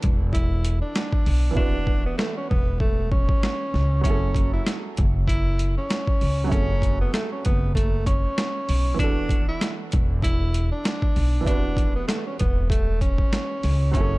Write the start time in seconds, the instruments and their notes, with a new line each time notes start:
Already playing: upright piano E3 B3 D4 F#4 A4
0.03 upright bass E1, kick, closed hi-hat
0.33 tenor saxophone E4, kick, closed hi-hat
0.65 closed hi-hat
0.82 tenor saxophone D4
0.96 cross-stick, snare, closed hi-hat
1.13 kick
1.26 upright bass B1, open hi-hat
1.51 upright piano E3 B3
1.55 upright bass E1, tenor saxophone D4, upright piano E4 F#4, kick
1.60 upright piano B4
1.87 kick
2.06 tenor saxophone B3
2.18 tenor saxophone A3, cross-stick, snare
2.37 tenor saxophone C#4
2.50 upright bass E1, tenor saxophone B3, kick
2.80 tenor saxophone A3, kick
3.12 tenor saxophone C#4, kick
3.29 kick
3.43 cross-stick, snare
3.74 upright bass C#2, snare
4.01 upright bass F#1, upright piano F#3 C#4, tenor saxophone C#4, kick, closed hi-hat
4.06 upright piano E4 G#4
4.11 upright piano A4
4.35 kick, closed hi-hat
4.53 tenor saxophone E4
4.67 cross-stick, snare, closed hi-hat
4.97 upright bass F#1, kick, closed hi-hat
5.28 tenor saxophone E4, kick, closed hi-hat
5.59 closed hi-hat
5.78 tenor saxophone C#4
5.90 cross-stick, snare, closed hi-hat
6.07 kick
6.21 upright bass C#2, open hi-hat
6.44 upright piano F#3 C#4
6.49 upright bass F#1, tenor saxophone C#4, upright piano E4 G#4, kick, closed hi-hat
6.53 upright piano A4
6.82 kick, closed hi-hat
7.01 tenor saxophone B3
7.14 tenor saxophone A3, cross-stick, snare, closed hi-hat
7.32 tenor saxophone C#4
7.45 upright bass F#1, tenor saxophone B3, kick, closed hi-hat
7.75 tenor saxophone A3, kick, closed hi-hat
8.06 tenor saxophone C#4, kick, closed hi-hat
8.38 cross-stick, snare, closed hi-hat
8.69 upright bass B1, open hi-hat
8.94 upright piano E3 B3
8.99 upright bass E1, upright piano D4 F#4, tenor saxophone D4, kick, closed hi-hat
9.03 upright piano A4
9.29 kick, closed hi-hat
9.49 tenor saxophone E4
9.61 cross-stick, snare, closed hi-hat
9.92 upright bass E1, kick, closed hi-hat
10.22 tenor saxophone E4, kick, closed hi-hat
10.54 closed hi-hat
10.72 tenor saxophone D4
10.85 cross-stick, snare, closed hi-hat
11.02 kick
11.16 upright bass B1, open hi-hat
11.41 upright piano E3 B3
11.45 upright bass E1, tenor saxophone D4, upright piano E4 F#4, kick, closed hi-hat
11.50 upright piano B4
11.77 kick, closed hi-hat
11.96 tenor saxophone B3
12.08 tenor saxophone A3, cross-stick, snare, closed hi-hat
12.27 tenor saxophone C#4
12.39 upright bass E1, tenor saxophone B3, kick, closed hi-hat
12.70 tenor saxophone A3, kick, closed hi-hat
13.01 tenor saxophone C#4, kick, closed hi-hat
13.18 kick
13.33 cross-stick, snare, closed hi-hat
13.63 upright bass C#2, snare, open hi-hat
13.91 upright bass F#1, upright piano F#3 C#4, tenor saxophone C#4, kick, closed hi-hat
13.96 upright piano E4 G#4
14.00 upright piano A4